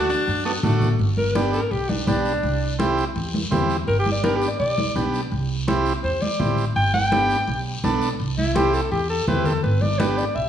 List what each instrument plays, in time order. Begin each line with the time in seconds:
Already playing: upright bass D2, transistor combo organ A3 D4 F#4, alto saxophone F#4
0.09 tenor saxophone D4, short guiro
0.27 upright bass F#2, high conga, long guiro
0.45 transistor combo organ A3 D4 F#4, tenor saxophone B3
0.63 upright bass A1, tenor saxophone A3, transistor combo organ A3 D4 F#4, high conga, low conga, short guiro
0.82 low conga, short guiro
0.99 upright bass G1, high conga, long guiro
1.17 alto saxophone A#4, high conga
1.35 transistor combo organ B3 D4 G4, alto saxophone D5, high conga, short guiro
1.53 alto saxophone A#4, short guiro
1.71 upright bass B1, alto saxophone G4, high conga, long guiro
1.89 alto saxophone D4, high conga
2.07 upright bass B1, transistor combo organ B3 D4 G4, alto saxophone D4, high conga, short guiro
2.25 short guiro
2.43 upright bass C2, high conga, long guiro
2.79 transistor combo organ C4 E4 G4, high conga, short guiro
2.98 short guiro
3.16 upright bass E2, high conga, long guiro
3.34 high conga
3.51 upright bass E2, transistor combo organ C4 E4 G4, high conga, low conga, short guiro
3.70 short guiro
3.87 upright bass G1, alto saxophone A#4, high conga, long guiro
3.99 alto saxophone G4
4.06 high conga
4.12 alto saxophone D5
4.23 transistor combo organ B3 D4 G4, alto saxophone A#4, high conga, short guiro
4.36 alto saxophone G4
4.42 short guiro
4.48 alto saxophone D5
4.60 upright bass B1, alto saxophone D5, high conga, long guiro
4.78 high conga
4.95 upright bass B1, transistor combo organ B3 D4 G4, high conga, short guiro
5.14 short guiro
5.32 upright bass C2, high conga, long guiro
5.67 transistor combo organ C4 E4 G4, high conga, short guiro
5.86 short guiro
6.04 upright bass E2, alto saxophone C5, high conga, long guiro
6.22 alto saxophone D5, high conga
6.40 upright bass A1, transistor combo organ C4 E4 G4, high conga, low conga, short guiro
6.58 short guiro
6.76 upright bass G1, alto saxophone G5, high conga, long guiro
6.94 alto saxophone G5, high conga
7.12 transistor combo organ B3 D4 G4, high conga, short guiro
7.30 short guiro
7.48 upright bass B1, high conga, long guiro
7.84 upright bass B1, transistor combo organ B3 D4 A4, high conga, short guiro
8.02 short guiro
8.20 upright bass C2, high conga, long guiro
8.38 alto saxophone E4, high conga
8.55 transistor combo organ C4 E4 G4, alto saxophone G4, high conga, short guiro
8.74 alto saxophone A4, short guiro
8.92 upright bass E2, alto saxophone G4, high conga, long guiro
9.10 alto saxophone A4
9.27 upright bass E2, transistor combo organ C4 E4 G4, alto saxophone B4, high conga, low conga, short guiro
9.45 alto saxophone A4, low conga, short guiro
9.63 upright bass G1, alto saxophone B4, high conga, long guiro
9.81 alto saxophone D5, high conga
9.99 transistor combo organ B3 D4 G4, alto saxophone B4, high conga, short guiro
10.18 alto saxophone D5, short guiro
10.35 upright bass B1, alto saxophone E5, high conga, long guiro